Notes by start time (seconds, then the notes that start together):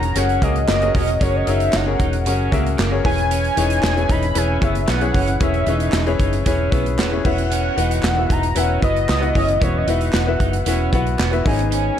Already playing: E1 C#4 F#4 G#4 A#4 C#5 A#5
0.03 closed hi-hat
0.15 F#1 C#4 F#4 G#4 A#4 C#5 F#5, snare, closed hi-hat
0.29 closed hi-hat
0.42 C#2 A#3 C#4 F#4 G#4 A#4 D#5, kick, closed hi-hat
0.56 closed hi-hat
0.68 F#1 A#3, snare, clap
0.82 C#4 F#4 G#4 A#4 D#5, closed hi-hat
0.95 E1 C#4, kick, open hi-hat
1.07 closed hi-hat
1.21 F#1 C#4 F#4 G#4 A#4 C#5, kick, closed hi-hat
1.36 D#5
1.47 F#1 C#4 D#4 F#4 G#4 A#4 C#5 E5, closed hi-hat
1.60 closed hi-hat
1.73 F#1 F#5, snare, clap
1.86 C#4 F#4 G#4 A#4 C#5
2.00 E1 D#4, kick, closed hi-hat
2.13 closed hi-hat
2.26 F#1 C#4 F#4 G#4 A#4 C#5, closed hi-hat
2.51 C#2 A#3 C#4 F#4 G#4 A#4 E5, kick, closed hi-hat
2.66 closed hi-hat
2.78 F#1 A#3, snare, clap
2.91 C#4 F#4 G#4 A#4 C#5
3.04 E1 E3 C#4 E4 G#4 B4 C#5 G#5, kick, open hi-hat
3.18 closed hi-hat
3.31 C#4, closed hi-hat
3.44 closed hi-hat
3.56 E1 E3 C#4 D#4 G#4 B4 C#5, closed hi-hat
3.70 closed hi-hat
3.83 E1, snare, clap
3.85 clap
3.96 C#4 E4 G#4 B4 C#5, closed hi-hat
4.09 E1 D#4 B5, kick, closed hi-hat
4.23 closed hi-hat
4.35 E1 C#4 E4 G#4 B4 C#5 G#5, closed hi-hat
4.61 F#1 B3 C#4 E4 G#4 B4 C#5 E5, kick, closed hi-hat
4.75 closed hi-hat
4.88 B1 B3 F#5, snare, clap
5.00 C#4 E4 G#4 B4 C#5, closed hi-hat
5.14 F#1 E3 C#4, kick, open hi-hat
5.28 closed hi-hat
5.40 E1 C#4 E4 G#4 B4 C#5 E5, kick, closed hi-hat
5.54 closed hi-hat
5.67 E1 E3 C#4 D#4 G#4 B4 C#5, closed hi-hat
5.80 closed hi-hat
5.92 E1, snare, clap
5.94 clap
6.06 C#4 E4 G#4 B4 C#5, closed hi-hat
6.19 F#1 D#4, kick, closed hi-hat
6.33 closed hi-hat
6.46 E1 C#4 E4 G#4 B4 C#5, kick, snare, closed hi-hat
6.71 B1 B3 C#4 E4 G#4 B4 E5, kick, closed hi-hat
6.86 closed hi-hat
6.98 E1 B3, snare, clap
7.12 C#4 E4 G#4 B4 C#5
7.24 E1 E3 B3 C#4 E4 F#4 B4 E5 F#5, kick, crash
7.38 closed hi-hat
7.51 C#4, closed hi-hat
7.76 E1 E3 B3 D#4 F#4 B4 F#5, closed hi-hat
7.91 closed hi-hat
8.03 E1, snare, clap
8.05 clap
8.16 B3 E4 F#4 B4 E5
8.30 E1 D#4 A#5, kick, closed hi-hat
8.43 closed hi-hat
8.55 E1 B3 C#4 E4 F#4 B4 E5 F#5, closed hi-hat
8.81 F#1 B3 E4 F#4 B4 D#5, kick, closed hi-hat
8.96 closed hi-hat
9.09 C#2 B3, snare, clap
9.21 B3 E4 F#4 B4 F#5, closed hi-hat
9.35 F#1 E3 C#4, kick, open hi-hat
9.48 closed hi-hat
9.61 E1 B3 C#4 E4 F#4 B4 C#5 E5, kick, closed hi-hat
9.77 D#5
9.87 E1 E3 B3 D#4 F#4 B4 E5 F#5, closed hi-hat
10.01 closed hi-hat
10.13 E1, snare, clap
10.15 F#5, clap
10.27 B3 E4 F#4 B4 E5
10.40 F#1 D#4, kick, closed hi-hat
10.53 closed hi-hat
10.66 E1 B3 C#4 E4 F#4 B4 E5, snare, closed hi-hat
10.93 B1 B3 E4 F#4 B4 F#5, kick, closed hi-hat
11.07 closed hi-hat
11.19 E1 B3, snare, clap
11.31 B3 E4 F#4 B4 E5, closed hi-hat
11.45 G#1 G#2 B3 C#4 D#4 G#4 B4 D#5 G#5, kick, open hi-hat
11.59 closed hi-hat
11.72 C#4, closed hi-hat